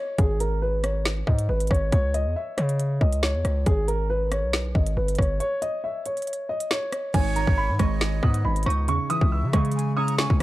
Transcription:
0.00 0.16 C#5 medium
0.18 1.23 G#1 loud
0.18 0.37 G#4 medium
0.18 kick loud
0.18 closed hi-hat medium
0.40 0.59 A#4 medium
0.40 closed hi-hat medium
0.62 0.81 B4 medium
0.84 1.02 C#5 medium
0.84 cross-stick loud
0.84 closed hi-hat medium
1.05 snare loud
1.27 1.48 G#2 loud
1.27 1.46 D#5 medium
1.27 kick loud
1.39 closed hi-hat medium
1.49 1.70 G#1 loud
1.49 1.68 B4 medium
1.60 closed hi-hat medium
1.67 1.92 G#1 loud
1.67 1.89 C#5 medium
1.67 kick medium
1.67 cross-stick loud
1.67 closed hi-hat medium
1.75 closed hi-hat soft
1.92 2.27 C#2 loud
1.92 2.11 C#5 loud
1.92 kick loud
1.92 closed hi-hat medium
2.14 2.33 D#5 loud
2.14 closed hi-hat medium
2.26 2.35 E2 loud
2.36 2.55 E5 medium
2.57 2.99 C#3 loud
2.57 2.98 C#5 medium
2.57 cross-stick loud
2.57 closed hi-hat medium
2.69 closed hi-hat medium
2.80 closed hi-hat medium
3.01 3.36 C#2 loud
3.01 3.20 D#5 medium
3.01 kick loud
3.13 closed hi-hat medium
3.23 3.64 C#5 medium
3.23 snare loud
3.34 3.44 E2 loud
3.45 3.65 C#2 loud
3.45 cross-stick medium
3.45 closed hi-hat medium
3.66 4.45 G#1 loud
3.66 3.85 G#4 loud
3.66 kick loud
3.66 closed hi-hat medium
3.88 4.07 A#4 loud
3.88 closed hi-hat medium
4.10 4.28 B4 loud
4.32 4.50 C#5 medium
4.32 cross-stick loud
4.32 closed hi-hat medium
4.43 4.73 B1 loud
4.53 snare loud
4.75 4.96 G#1 loud
4.75 4.94 D#5 medium
4.75 kick loud
4.87 closed hi-hat medium
4.97 5.18 G1 loud
4.97 5.15 B4 medium
5.08 closed hi-hat medium
5.15 5.40 G1 loud
5.15 5.37 C#5 medium
5.15 kick medium
5.15 cross-stick loud
5.15 closed hi-hat medium
5.22 closed hi-hat soft
5.40 5.59 C#5 loud
5.40 closed hi-hat medium
5.62 5.81 D#5 medium
5.62 closed hi-hat medium
5.84 6.02 E5 medium
6.06 6.47 C#5 medium
6.06 closed hi-hat medium
6.17 closed hi-hat soft
6.22 closed hi-hat medium
6.27 closed hi-hat medium
6.33 closed hi-hat medium
6.49 6.68 D#5 medium
6.60 closed hi-hat medium
6.71 7.12 C#5 medium
6.71 snare loud
6.92 cross-stick loud
6.92 closed hi-hat medium
7.14 7.46 G#1 loud
7.14 8.23 G#2 loud
7.14 7.75 C#5 loud
7.14 7.33 G#5 loud
7.14 kick loud
7.14 closed hi-hat medium
7.14 crash loud
7.36 8.45 D#3 medium
7.36 7.54 A#5 medium
7.36 closed hi-hat medium
7.47 7.71 G#1 loud
7.47 kick loud
7.58 7.76 B5 medium
7.69 7.79 G#2 loud
7.79 8.21 G#1 loud
7.79 8.88 G#3 medium
7.79 8.84 D#5 medium
7.79 7.98 C#6 medium
7.79 kick medium
7.79 cross-stick loud
7.79 closed hi-hat medium
8.01 snare loud
8.23 8.44 G#2 loud
8.23 8.88 B3 medium
8.23 8.42 D#6 medium
8.23 kick loud
8.34 closed hi-hat medium
8.45 8.65 G#1 loud
8.45 8.88 G#2 medium
8.45 8.63 B5 medium
8.56 closed hi-hat medium
8.63 8.90 C#2 loud
8.63 8.88 D#4 medium
8.63 8.85 C#6 medium
8.63 cross-stick loud
8.63 closed hi-hat medium
8.70 closed hi-hat medium
8.88 8.99 E2 loud
8.88 9.97 C#3 loud
8.88 9.07 C#6 loud
8.88 closed hi-hat medium
9.10 10.19 E3 medium
9.10 9.71 E5 medium
9.10 9.28 D#6 loud
9.10 closed hi-hat medium
9.21 9.45 C#2 loud
9.21 kick loud
9.32 9.50 E6 medium
9.43 9.53 C#3 loud
9.53 10.27 C#3 loud
9.53 10.43 G#3 medium
9.53 9.94 C#6 medium
9.53 kick medium
9.53 cross-stick loud
9.53 closed hi-hat medium
9.65 closed hi-hat soft
9.72 9.96 G#5 medium
9.72 closed hi-hat medium
9.79 closed hi-hat medium
9.97 10.43 C#4 medium
9.97 10.18 A#5 medium
9.97 10.15 D#6 medium
10.08 closed hi-hat medium
10.18 10.43 C#3 medium
10.18 10.39 G#5 medium
10.18 10.43 C#6 medium
10.18 snare loud
10.30 10.40 C#2 loud
10.30 kick loud
10.40 10.43 E5 medium

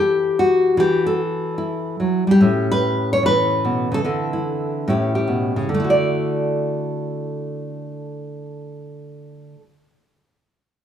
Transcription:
0.00 0.77 E3 medium
0.00 0.78 G4 loud
0.00 0.36 A4 medium
0.39 1.19 F#4 medium
0.77 1.99 E3 medium
0.77 1.06 G4 medium
1.07 2.01 A4 medium
1.58 2.41 E4 medium
2.00 2.27 F#3 medium
2.27 2.40 G3 medium
2.27 3.11 G4 medium
2.41 4.03 A2 medium
2.41 4.03 C#4 soft
2.71 3.11 B4 loud
3.13 3.24 C#5 medium
3.23 5.69 E3 medium
3.23 3.93 B4 loud
3.65 3.91 B2 medium
3.92 4.04 C#3 medium
3.92 4.88 A4 medium
4.04 4.85 D3 medium
4.04 4.85 C4 medium
4.04 4.32 E4 soft
4.33 4.85 E4 soft
4.88 5.67 A2 medium
4.88 5.68 C#4 medium
4.88 5.68 E4 medium
4.88 5.14 G4 medium
5.15 5.67 G4 medium
5.28 5.55 B2 medium
5.56 5.69 C#3 medium
5.69 9.55 D3 medium
5.74 9.60 A3 medium
5.80 9.66 E4 medium
5.84 9.70 F#4 medium
5.90 9.72 D5 medium

